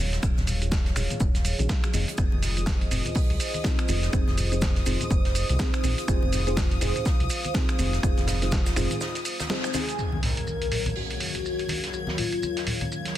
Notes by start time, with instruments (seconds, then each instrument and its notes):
Already playing: analog synth pad F#3 G#4 C#5 F5
0.00 analog synth bass D#1, synth stab C#4 D#4 F4 F#4 G#4
0.12 snare, closed hi-hat, cabasa
0.23 analog synth bass D#1, synth stab C#4 D#4 F4 F#4 G#4, finger snap, kick, cabasa, shaker
0.37 analog synth bass D#1, snare, high conga, cabasa
0.47 open hi-hat, low conga, cabasa, shaker
0.61 synth stab C#4 D#4 F4 F#4 G#4, closed hi-hat, cabasa
0.72 kick, snare, high conga, cabasa, shaker
0.85 snare, closed hi-hat
0.96 analog synth bass D#1, synth stab C#4 D#4 F4 F#4 G#4, finger snap, open hi-hat, low conga, cabasa, shaker
1.10 closed hi-hat, high conga, low conga, cabasa
1.20 analog synth bass D#1, kick, cabasa, shaker
1.35 snare, closed hi-hat, cabasa
1.45 open hi-hat, cabasa, shaker
1.58 analog synth bass A#1, synth stab C#4 D#4 F4 F#4 G#4, closed hi-hat, high conga, cabasa
1.69 kick, snare, cabasa
1.84 synth stab C#4 D#4 F4 F#4 G#4, finger snap, closed hi-hat, cabasa
1.94 analog synth bass F1, synth stab C4 D#4 F4 G#4 D#5, analog synth pad F4 C5 D#5, open hi-hat, high conga, cabasa, shaker
2.08 closed hi-hat, cabasa
2.18 analog synth bass F1, synth stab C4 D#4 F4 G#4 C5, violin section D#6, finger snap, kick, cabasa, shaker
2.32 analog synth bass F1, high conga
2.42 snare, open hi-hat, low conga, cabasa, shaker
2.57 synth stab C4 D#4 F4 G#4 C5, closed hi-hat, cabasa
2.66 kick, snare, high conga, cabasa, shaker
2.81 closed hi-hat
2.91 analog synth bass F1, synth stab C4 D#4 F4 G#4 C5, open hi-hat, low conga, cabasa, shaker
3.06 closed hi-hat, high conga, low conga, cabasa
3.15 kick, open hi-hat, cabasa
3.30 analog synth bass C2, closed hi-hat
3.40 open hi-hat, cabasa, shaker
3.54 closed hi-hat, high conga, cabasa
3.64 synth stab C4 D#4 F4 G#4 C5, kick, snare, cabasa, shaker
3.79 finger snap, closed hi-hat, cabasa
3.88 analog synth bass F1, synth stab C4 D#4 F4 G#4 C5, open hi-hat, high conga, cabasa, shaker
4.03 snare, closed hi-hat, cabasa
4.13 analog synth bass F1, synth stab C4 D#4 F4 G#4 C5, finger snap, kick, cabasa, shaker
4.27 analog synth bass F1, snare, high conga
4.37 open hi-hat, low conga, cabasa, shaker
4.52 synth stab C4 D#4 F4 G#4 C5, closed hi-hat, cabasa
4.62 kick, snare, high conga, cabasa, shaker
4.76 snare, closed hi-hat
4.86 analog synth bass F1, synth stab C4 D#4 F4 G#4 C5, open hi-hat, low conga, cabasa, shaker
5.00 closed hi-hat, high conga, low conga, cabasa
5.11 analog synth bass F1, kick, cabasa, shaker
5.25 snare, closed hi-hat
5.35 open hi-hat, cabasa, shaker
5.49 analog synth bass C2, closed hi-hat, high conga, cabasa
5.59 synth stab C4 D#4 F4 G#4 C5, kick, snare, cabasa, shaker
5.74 finger snap, closed hi-hat, cabasa
5.83 analog synth bass A#1, synth stab C4 D#4 F4 G#4 C5, analog synth pad F5, open hi-hat, high conga, cabasa, shaker
5.98 closed hi-hat, cabasa
6.08 analog synth bass F1, synth stab C4 D#4 F4 G#4 C5, finger snap, kick, cabasa, shaker
6.22 analog synth bass F1, high conga
6.32 snare, open hi-hat, low conga, cabasa, shaker
6.47 synth stab C4 D#4 F4 G#4 C5, closed hi-hat, cabasa
6.56 kick, snare, high conga, cabasa, shaker
6.71 closed hi-hat
6.81 analog synth bass F1, synth stab C4 D#4 F4 G#4 C5, snare, open hi-hat, low conga, cabasa, shaker
6.95 closed hi-hat, high conga, low conga, cabasa
7.06 kick, snare, cabasa, shaker
7.20 analog synth bass C2, closed hi-hat
7.29 open hi-hat, cabasa, shaker
7.45 closed hi-hat, high conga, cabasa
7.54 synth stab C4 D#4 F4 G#4 C5, kick, snare, cabasa, shaker
7.69 finger snap, closed hi-hat, cabasa
7.79 analog synth bass F1, synth stab C4 D#4 F4 G#4 C5, open hi-hat, high conga, cabasa, shaker
7.93 snare, closed hi-hat, cabasa
8.03 analog synth bass F1, synth stab C4 D#4 F4 G#4 C5, finger snap, kick, cabasa, shaker
8.17 analog synth bass F1, snare, closed hi-hat, high conga, cabasa
8.27 snare, open hi-hat, low conga, cabasa, shaker
8.42 synth stab C4 D#4 F4 G#4 C5, snare, closed hi-hat, cabasa
8.51 kick, snare, high conga, cabasa, shaker
8.66 snare, closed hi-hat, cabasa, shaker
8.76 analog synth bass F1, synth stab C4 D#4 F4 G#4 C5, finger snap, snare, open hi-hat, low conga, cabasa
8.90 closed hi-hat, high conga, low conga, cabasa, shaker
9.01 snare, cabasa, shaker
9.14 snare, closed hi-hat, cabasa
9.25 open hi-hat, cabasa, shaker
9.40 snare, closed hi-hat, high conga, cabasa, shaker
9.49 synth stab C4 D#4 F4 G#4 C5, snare, cabasa
9.64 finger snap, closed hi-hat, cabasa, shaker
9.73 synth stab C4 D#4 F4 G#4 C5, soft synth lead G#4, snare, open hi-hat, high conga, cabasa, shaker
9.89 closed hi-hat, cabasa
9.98 analog synth pad D#3 F#3 G#4 A#4 C#5 F5, violin section G#6, impact, shaker
10.12 high conga
10.23 soft synth lead A#4, snare, open hi-hat, low conga, shaker
10.37 closed hi-hat
10.47 high conga, shaker
10.62 closed hi-hat
10.72 open hi-hat, low conga, shaker
10.86 closed hi-hat, high conga, low conga
10.96 soft synth lead F#4, open hi-hat
11.11 closed hi-hat
11.20 open hi-hat, shaker
11.35 closed hi-hat, high conga
11.45 shaker
11.59 closed hi-hat
11.69 open hi-hat, high conga, shaker
11.84 snare, closed hi-hat
11.93 soft synth lead F#4, shaker
12.07 snare, high conga
12.18 soft synth lead F4, open hi-hat, low conga, shaker
12.32 closed hi-hat
12.43 high conga, shaker
12.57 snare, closed hi-hat
12.67 open hi-hat, low conga, shaker
12.81 closed hi-hat, high conga, low conga
12.92 shaker
13.05 snare, closed hi-hat